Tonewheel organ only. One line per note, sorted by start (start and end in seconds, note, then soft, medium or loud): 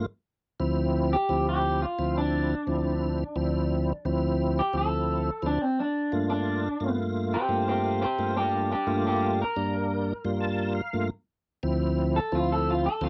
0.60 1.16 D2 medium
0.60 1.16 F3 medium
0.60 1.16 C4 medium
0.60 1.17 E4 loud
1.29 1.86 D2 medium
1.29 1.86 F3 medium
1.29 1.86 C4 medium
1.29 1.86 E4 medium
1.99 2.55 D2 medium
1.99 2.55 F3 medium
1.99 2.55 C4 medium
1.99 2.55 E4 medium
2.67 3.24 D2 medium
2.67 3.24 F3 medium
2.67 3.24 C4 medium
2.67 3.24 E4 medium
3.36 3.93 D2 medium
3.36 3.93 F3 medium
3.36 3.93 C4 medium
3.36 3.93 E4 medium
4.05 4.62 D2 medium
4.05 4.62 F3 medium
4.05 4.62 C4 medium
4.05 4.62 E4 medium
4.73 5.31 D2 medium
4.73 5.30 F3 medium
4.73 5.30 C4 medium
4.73 5.31 E4 medium
5.42 5.59 D2 medium
5.42 5.59 F3 medium
5.42 5.59 C4 medium
5.42 5.59 E4 medium
6.12 6.69 G2 medium
6.12 6.69 A3 medium
6.12 6.69 A#3 medium
6.12 6.69 F4 medium
6.80 7.37 G2 medium
6.80 7.37 A3 medium
6.80 7.37 A#3 medium
6.80 7.38 F4 medium
7.49 8.06 G2 medium
7.49 8.06 A3 medium
7.49 8.06 A#3 medium
7.49 8.06 F4 medium
8.18 8.75 G2 medium
8.18 8.75 A3 medium
8.18 8.76 A#3 medium
8.18 8.76 F4 medium
8.87 9.44 G2 medium
8.87 9.44 A3 medium
8.87 9.44 A#3 medium
8.87 9.44 F4 medium
9.56 10.13 G2 medium
9.56 10.13 G3 medium
9.56 10.13 A#3 medium
9.56 10.13 D4 medium
10.25 10.82 G2 medium
10.25 10.82 G3 medium
10.25 10.82 A#3 medium
10.25 10.82 F4 medium
10.41 10.73 A5 medium
10.75 11.08 F5 medium
10.93 11.10 G2 medium
10.93 11.10 A3 medium
10.93 11.10 A#3 medium
10.93 11.10 F4 medium
11.63 12.20 D2 medium
11.63 12.20 F3 medium
11.63 12.20 C4 medium
11.63 12.20 E4 loud
12.32 12.89 D2 medium
12.32 12.89 F3 medium
12.32 12.89 C4 medium
12.32 12.89 E4 medium
13.01 13.09 D2 medium
13.01 13.09 F3 medium
13.01 13.09 C4 medium
13.01 13.09 E4 medium